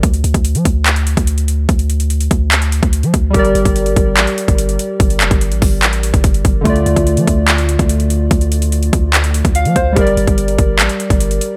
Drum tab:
HH |xxxxxxx-xxxxxxx-|xxxxxxx-xxxxxxx-|xxxxxxx-xxxxxxx-|xxxxxxo-xxxxxxx-|
CP |--------x-------|--------x-------|--------x-------|--x-----x-------|
BD |o--o--o----o----|o-----o----o--o-|o--o--o----o----|o--o--o----oo-o-|

HH |xxxxxxx-xxxxxxx-|xxxxxxx-xxxxxxx-|xxxxxxx-xxxxxxx-|
CP |--------x-------|--------x-------|--------x-------|
BD |o--o--o----o----|o-----o----o--o-|o--o--o----o----|